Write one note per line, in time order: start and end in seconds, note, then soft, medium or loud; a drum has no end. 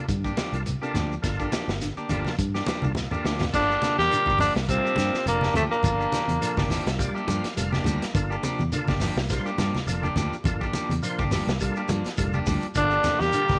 0.08 0.30 G2 medium
0.08 0.30 D3 medium
0.08 kick medium
0.08 closed hi-hat medium
0.08 shekere medium
0.24 0.36 A#3 soft
0.24 0.36 D4 soft
0.24 0.37 G4 medium
0.24 kick medium
0.24 shekere soft
0.37 0.56 F3 medium
0.37 0.56 A#3 medium
0.37 0.56 D4 medium
0.37 0.56 G4 medium
0.37 snare medium
0.37 closed hi-hat soft
0.37 high conga medium
0.37 shekere medium
0.52 0.75 C2 medium
0.52 0.63 A#3 medium
0.52 0.63 D4 medium
0.52 0.63 F4 medium
0.52 0.63 A4 medium
0.52 closed hi-hat soft
0.52 shekere soft
0.66 closed hi-hat medium
0.66 high conga medium
0.66 shekere medium
0.82 0.92 C3 medium
0.82 0.96 A#3 medium
0.82 0.94 A#3 soft
0.82 0.96 D4 medium
0.82 0.94 D4 medium
0.82 0.96 F4 medium
0.82 0.95 G4 medium
0.82 0.97 A4 medium
0.82 shekere soft
0.94 1.16 D2 medium
0.94 1.13 F3 medium
0.94 1.14 A#3 medium
0.94 1.14 D4 medium
0.94 1.14 G4 medium
0.94 snare soft
0.94 closed hi-hat soft
0.94 low conga medium
0.94 shekere medium
1.12 1.33 F3 medium
1.12 shekere soft
1.22 1.45 G1 medium
1.22 1.54 A#3 medium
1.22 1.54 D4 medium
1.22 1.54 F4 medium
1.22 1.54 A4 medium
1.22 kick medium
1.22 snare soft
1.22 closed hi-hat medium
1.22 shekere medium
1.39 1.50 D3 medium
1.39 1.51 A#3 soft
1.39 1.51 D4 medium
1.39 1.52 G4 medium
1.39 kick medium
1.39 shekere soft
1.52 1.74 E3 medium
1.52 1.71 F3 medium
1.52 1.71 A#3 medium
1.52 1.71 D4 medium
1.52 1.71 G4 medium
1.52 snare medium
1.52 closed hi-hat soft
1.52 high conga medium
1.52 shekere medium
1.68 1.90 G1 medium
1.68 snare medium
1.68 shekere soft
1.81 2.03 D3 medium
1.81 snare soft
1.81 closed hi-hat medium
1.81 shekere medium
1.97 2.09 A#3 soft
1.97 2.09 D4 soft
1.97 2.10 G4 medium
1.97 muted fingered electric bass stroke soft
1.97 shekere soft
2.09 2.22 G1 medium
2.09 2.29 F3 medium
2.09 2.35 A#3 medium
2.09 2.29 A#3 medium
2.09 2.36 D4 medium
2.09 2.29 D4 medium
2.09 2.36 F4 medium
2.09 2.29 G4 medium
2.09 2.36 A4 medium
2.09 closed hi-hat soft
2.09 low conga medium
2.09 shekere medium
2.25 2.47 F3 medium
2.25 snare soft
2.25 high conga medium
2.25 shekere soft
2.38 2.60 G2 medium
2.38 kick medium
2.38 closed hi-hat medium
2.38 shekere medium
2.54 2.76 E3 medium
2.54 2.66 A#3 soft
2.54 2.67 D4 soft
2.54 2.67 G4 medium
2.54 snare soft
2.54 shekere soft
2.66 2.86 F3 medium
2.66 2.86 A#3 medium
2.66 2.86 D4 medium
2.66 2.86 G4 medium
2.66 snare medium
2.66 closed hi-hat soft
2.66 high conga loud
2.66 shekere medium
2.82 3.06 C2 medium
2.82 3.05 D3 medium
2.82 2.92 A#3 medium
2.82 2.92 D4 medium
2.82 2.92 F4 medium
2.82 2.93 A4 medium
2.82 high conga loud
2.82 shekere soft
2.95 snare soft
2.95 low conga medium
2.95 shekere medium
3.11 3.25 A#3 medium
3.11 3.24 A#3 soft
3.11 3.25 D4 medium
3.11 3.24 D4 soft
3.11 3.26 F4 medium
3.11 3.25 G4 medium
3.11 3.26 A4 medium
3.11 low conga medium
3.11 shekere soft
3.24 3.47 D2 medium
3.24 3.37 D3 medium
3.24 3.43 F3 medium
3.24 3.44 A#3 medium
3.24 3.44 D4 medium
3.24 3.44 G4 medium
3.24 snare medium
3.24 shekere medium
3.40 3.51 C3 medium
3.40 snare medium
3.40 low conga medium
3.40 shekere soft
3.53 3.76 G1 medium
3.53 3.95 D3 medium
3.53 3.75 D3 medium
3.53 3.70 F3 medium
3.53 3.74 A#3 medium
3.53 3.70 A#3 medium
3.53 3.75 D4 medium
3.53 3.96 D4 medium
3.53 3.70 D4 medium
3.53 3.75 F4 medium
3.53 3.96 F4 medium
3.53 3.69 G4 medium
3.53 3.75 A4 medium
3.53 kick medium
3.53 crash medium
3.53 shekere medium
3.70 3.82 A#3 soft
3.70 3.82 D4 soft
3.70 3.83 G4 medium
3.70 shekere soft
3.82 4.04 C3 medium
3.82 4.01 A#3 medium
3.82 4.02 D4 medium
3.82 4.02 G4 medium
3.82 muted clean electric guitar stroke medium
3.82 snare soft
3.82 closed hi-hat soft
3.82 high conga loud
3.82 shekere medium
3.98 4.08 E2 medium
3.98 4.37 G3 medium
3.98 4.37 G4 loud
3.98 4.37 A#4 medium
3.98 snare soft
3.98 shekere soft
4.10 4.32 D3 medium
4.10 4.32 A#3 medium
4.10 4.32 D4 medium
4.10 4.32 F4 medium
4.10 4.32 C5 medium
4.10 closed hi-hat medium
4.10 shekere medium
4.26 4.49 G1 medium
4.26 4.39 A#3 soft
4.26 4.40 D4 soft
4.26 4.40 G4 medium
4.26 kick medium
4.26 high conga medium
4.26 shekere soft
4.39 4.54 D3 medium
4.39 4.59 F3 medium
4.39 4.62 F3 medium
4.39 4.59 A#3 medium
4.39 4.53 D4 medium
4.39 4.59 D4 medium
4.39 4.54 F4 medium
4.39 4.59 G4 medium
4.39 open hi-hat medium
4.39 low conga medium
4.39 shekere medium
4.56 4.78 C2 medium
4.56 snare medium
4.56 shekere soft
4.68 5.23 C3 medium
4.68 4.90 G3 medium
4.68 4.90 A#3 medium
4.68 5.23 C4 medium
4.68 4.90 D4 medium
4.68 4.90 F4 medium
4.68 4.90 A4 medium
4.68 kick medium
4.68 closed hi-hat medium
4.68 shekere medium
4.72 5.24 F4 medium
4.84 4.96 A#3 soft
4.84 4.96 D4 soft
4.84 4.97 G4 medium
4.84 shekere soft
4.96 5.10 G2 medium
4.96 5.16 F3 medium
4.96 5.16 A#3 medium
4.96 5.16 D4 medium
4.96 5.17 G4 medium
4.96 snare soft
4.96 closed hi-hat soft
4.96 high conga loud
4.96 shekere medium
5.13 muted fingered electric bass stroke soft
5.13 snare soft
5.13 shekere soft
5.26 5.48 F1 medium
5.26 5.53 A#2 medium
5.26 5.47 F3 medium
5.26 5.48 A#3 medium
5.26 5.54 A#3 medium
5.26 5.48 D4 medium
5.26 5.55 D4 medium
5.26 5.48 F4 medium
5.26 5.48 A4 medium
5.26 closed hi-hat medium
5.26 shekere medium
5.41 5.54 A#3 soft
5.41 5.55 D4 medium
5.41 5.55 G4 medium
5.41 snare soft
5.41 high conga medium
5.41 shekere soft
5.54 5.67 D2 medium
5.54 5.63 A2 medium
5.54 5.76 E3 medium
5.54 5.74 F3 medium
5.54 5.63 A3 medium
5.54 5.74 A#3 medium
5.54 5.74 D4 medium
5.54 5.74 G4 medium
5.54 closed hi-hat medium
5.54 low conga medium
5.54 shekere medium
5.58 5.65 C4 medium
5.71 6.82 A#2 medium
5.71 6.82 A#3 medium
5.71 6.84 D4 medium
5.71 shekere soft
5.83 6.06 G1 loud
5.83 6.05 F3 medium
5.83 6.05 A#3 medium
5.83 6.05 D4 medium
5.83 6.05 F4 medium
5.83 6.05 A4 medium
5.83 kick medium
5.83 closed hi-hat medium
5.83 low conga medium
5.83 shekere medium
6.00 6.12 A#3 soft
6.00 6.12 D4 soft
6.00 6.13 G4 medium
6.00 shekere soft
6.12 6.34 D3 medium
6.12 6.32 F3 medium
6.12 6.32 A#3 medium
6.12 6.32 D4 medium
6.12 6.32 G4 medium
6.12 snare soft
6.12 closed hi-hat medium
6.12 high conga loud
6.12 shekere medium
6.28 6.38 E2 medium
6.28 closed hi-hat medium
6.28 high conga medium
6.28 shekere soft
6.40 6.63 F3 medium
6.40 6.62 A#3 loud
6.40 6.62 D4 medium
6.40 6.63 F4 medium
6.40 6.63 A4 loud
6.40 closed hi-hat medium
6.40 shekere medium
6.57 6.79 G1 medium
6.57 6.69 A#3 medium
6.57 6.70 D4 medium
6.57 6.70 G4 medium
6.57 kick medium
6.57 snare soft
6.57 high conga medium
6.57 shekere soft
6.70 6.92 E3 medium
6.70 6.89 F3 medium
6.70 6.89 A#3 medium
6.70 6.89 D4 medium
6.70 6.90 G4 medium
6.70 6.97 E5 medium
6.70 snare soft
6.70 open hi-hat medium
6.70 low conga medium
6.70 shekere medium
6.86 7.08 C2 medium
6.86 snare medium
6.86 closed hi-hat medium
6.86 shekere soft
6.98 7.20 G3 medium
6.98 7.20 A#3 loud
6.98 7.20 D4 medium
6.98 7.20 F4 medium
6.98 7.20 G4 loud
6.98 7.14 D5 medium
6.98 kick medium
6.98 closed hi-hat medium
6.98 shekere medium
7.15 7.27 A#3 soft
7.15 7.27 D4 medium
7.15 7.27 G4 medium
7.15 7.27 E5 medium
7.15 shekere soft
7.27 7.40 G2 medium
7.27 7.46 F3 medium
7.27 7.49 F3 medium
7.27 7.46 A#3 medium
7.27 7.47 D4 medium
7.27 7.47 G4 medium
7.27 7.55 F5 medium
7.27 closed hi-hat soft
7.27 high conga loud
7.27 shekere medium
7.44 muted fingered electric bass stroke soft
7.44 snare soft
7.44 closed hi-hat medium
7.44 shekere soft
7.56 7.79 F1 medium
7.56 7.78 G3 medium
7.56 7.78 A#3 medium
7.56 7.78 D4 medium
7.56 7.78 F4 medium
7.56 7.79 A4 loud
7.56 7.72 F5 medium
7.56 closed hi-hat medium
7.56 shekere medium
7.72 7.85 A#3 medium
7.72 7.85 D4 medium
7.72 7.85 G4 medium
7.72 7.86 A5 medium
7.72 snare soft
7.72 high conga medium
7.72 shekere soft
7.84 7.98 D2 medium
7.84 8.04 F3 medium
7.84 8.07 G3 medium
7.84 8.04 A#3 medium
7.84 8.04 D4 medium
7.84 8.04 G4 medium
7.84 8.13 A#5 medium
7.84 closed hi-hat medium
7.84 low conga medium
7.84 shekere medium
8.02 muted fingered electric bass stroke soft
8.02 snare soft
8.02 closed hi-hat medium
8.02 shekere soft
8.14 8.36 G1 medium
8.14 8.35 D3 medium
8.14 8.36 A#3 loud
8.14 8.36 D4 loud
8.14 8.36 F4 medium
8.14 8.36 A4 loud
8.14 kick medium
8.14 closed hi-hat medium
8.14 shekere medium
8.30 8.42 A#3 soft
8.30 8.43 D4 medium
8.30 8.43 G4 medium
8.30 shekere soft
8.43 8.64 C3 medium
8.43 8.62 F3 medium
8.43 8.62 A#3 medium
8.43 8.62 D4 medium
8.43 8.62 G4 medium
8.43 closed hi-hat medium
8.43 high conga medium
8.43 shekere medium
8.59 8.69 E2 medium
8.59 high conga medium
8.59 shekere soft
8.72 8.94 D3 medium
8.72 8.94 A#3 medium
8.72 8.94 D4 medium
8.72 8.94 F4 medium
8.72 8.94 A4 loud
8.72 closed hi-hat medium
8.72 high conga medium
8.72 shekere medium
8.88 9.10 G1 medium
8.88 9.00 A#3 soft
8.88 9.00 D4 medium
8.88 9.01 G4 medium
8.88 kick medium
8.88 snare soft
8.88 high conga medium
8.88 shekere soft
9.00 9.19 F3 medium
9.00 9.23 F3 medium
9.00 9.20 A#3 medium
9.00 9.20 D4 medium
9.00 9.20 G4 medium
9.00 snare soft
9.00 open hi-hat medium
9.00 low conga medium
9.00 shekere medium
9.16 9.38 C2 medium
9.16 snare medium
9.16 shekere soft
9.29 9.51 G3 medium
9.29 9.51 A#3 medium
9.29 9.51 D4 medium
9.29 9.51 F4 medium
9.29 9.51 C5 medium
9.29 kick medium
9.29 snare soft
9.29 closed hi-hat medium
9.29 shekere medium
9.46 9.58 A#3 medium
9.46 9.58 D4 medium
9.46 9.58 G4 medium
9.46 shekere soft
9.58 9.70 G2 medium
9.58 9.77 F3 medium
9.58 9.80 G3 medium
9.58 9.77 A#3 medium
9.58 9.77 D4 medium
9.58 9.77 G4 medium
9.58 snare soft
9.58 closed hi-hat medium
9.58 high conga loud
9.58 shekere medium
9.73 muted fingered electric bass stroke soft
9.73 snare soft
9.73 high conga medium
9.73 shekere soft
9.86 10.09 F1 medium
9.86 10.09 F3 medium
9.86 10.09 A#3 medium
9.86 10.09 D4 medium
9.86 10.09 F4 medium
9.86 10.09 A4 medium
9.86 closed hi-hat medium
9.86 shekere medium
10.03 10.15 A#3 medium
10.03 10.16 D4 medium
10.03 10.16 G4 medium
10.03 high conga medium
10.03 shekere soft
10.16 10.28 D2 medium
10.16 10.38 E3 medium
10.16 10.35 F3 medium
10.16 10.35 A#3 medium
10.16 10.35 D4 medium
10.16 10.35 G4 medium
10.16 closed hi-hat soft
10.16 low conga medium
10.16 shekere medium
10.32 muted fingered electric bass stroke soft
10.32 shekere soft
10.44 10.67 G1 medium
10.44 10.66 F3 medium
10.44 10.66 A#3 medium
10.44 10.67 D4 medium
10.44 10.67 F4 medium
10.44 10.67 A4 loud
10.44 kick medium
10.44 closed hi-hat medium
10.44 low conga medium
10.44 shekere medium
10.61 10.73 A#3 medium
10.61 10.73 D4 medium
10.61 10.74 G4 medium
10.61 kick medium
10.61 shekere soft
10.73 10.95 E3 medium
10.73 10.92 F3 medium
10.73 10.92 A#3 medium
10.73 10.93 D4 medium
10.73 10.93 G4 medium
10.73 closed hi-hat medium
10.73 high conga medium
10.73 shekere medium
10.89 10.99 E2 medium
10.89 closed hi-hat medium
10.89 high conga medium
10.89 shekere soft
11.03 11.24 F3 medium
11.03 11.24 A#3 medium
11.03 11.24 D4 medium
11.03 11.24 F4 medium
11.03 11.25 C5 loud
11.03 closed hi-hat medium
11.03 shekere medium
11.19 11.41 G1 medium
11.19 11.31 A#3 medium
11.19 11.31 D4 medium
11.19 11.32 G4 medium
11.19 kick medium
11.19 high conga medium
11.19 shekere soft
11.31 11.50 F3 medium
11.31 11.53 G3 medium
11.31 11.50 A#3 medium
11.31 11.51 D4 medium
11.31 11.51 G4 medium
11.31 snare soft
11.31 open hi-hat medium
11.31 low conga medium
11.31 shekere medium
11.47 11.69 C2 medium
11.47 snare medium
11.47 closed hi-hat medium
11.47 shekere soft
11.60 11.82 G3 medium
11.60 11.82 A#3 loud
11.60 11.82 D4 medium
11.60 11.82 F4 medium
11.60 11.82 A4 loud
11.60 kick medium
11.60 closed hi-hat medium
11.60 shekere medium
11.76 11.89 A#3 medium
11.76 11.89 D4 medium
11.76 11.89 G4 medium
11.76 shekere soft
11.89 12.01 G2 medium
11.89 12.10 F3 medium
11.89 12.08 F3 medium
11.89 12.08 A#3 medium
11.89 12.08 D4 medium
11.89 muted clean electric guitar stroke medium
11.89 closed hi-hat medium
11.89 high conga loud
11.89 shekere medium
12.04 muted fingered electric bass stroke soft
12.04 snare soft
12.04 closed hi-hat medium
12.04 shekere soft
12.17 12.40 F1 medium
12.17 12.40 G3 medium
12.17 12.39 A#3 medium
12.17 12.39 D4 medium
12.17 12.39 F4 medium
12.17 12.40 A4 medium
12.17 kick medium
12.17 closed hi-hat medium
12.17 shekere medium
12.33 12.46 A#3 soft
12.33 12.47 D4 medium
12.33 12.47 G4 medium
12.33 high conga medium
12.33 shekere soft
12.46 12.59 D2 medium
12.46 12.66 F3 medium
12.46 12.68 G3 medium
12.46 12.66 A#3 medium
12.46 12.66 D4 medium
12.46 12.66 G4 medium
12.46 kick medium
12.46 open hi-hat medium
12.46 low conga medium
12.46 shekere medium
12.62 closed hi-hat medium
12.62 shekere soft
12.75 12.98 G1 loud
12.75 12.97 D3 medium
12.75 13.17 D3 medium
12.75 12.97 A#3 medium
12.75 12.97 D4 medium
12.75 13.22 D4 loud
12.75 12.97 F4 medium
12.75 13.26 F4 medium
12.75 12.97 A4 medium
12.75 kick medium
12.75 closed hi-hat medium
12.75 shekere medium
12.91 13.03 A#3 soft
12.91 13.04 D4 medium
12.91 13.04 G4 medium
12.91 shekere soft
13.04 13.26 C3 medium
13.04 13.23 F3 medium
13.04 13.23 A#3 medium
13.04 13.23 D4 medium
13.04 13.23 G4 medium
13.04 snare soft
13.04 closed hi-hat medium
13.04 high conga loud
13.04 low conga medium
13.04 shekere medium
13.20 13.30 E2 medium
13.20 13.59 G3 medium
13.20 13.59 G4 medium
13.20 snare soft
13.20 shekere soft
13.25 13.59 A#4 medium
13.33 13.54 D3 medium
13.33 13.54 A#3 medium
13.33 13.54 D4 medium
13.33 13.54 F4 medium
13.33 13.55 A4 medium
13.33 closed hi-hat medium
13.33 shekere medium
13.48 13.59 G1 medium
13.48 13.59 A#3 soft
13.48 13.59 D4 medium
13.48 13.59 G4 medium
13.48 kick medium
13.48 snare soft
13.48 high conga medium
13.48 shekere soft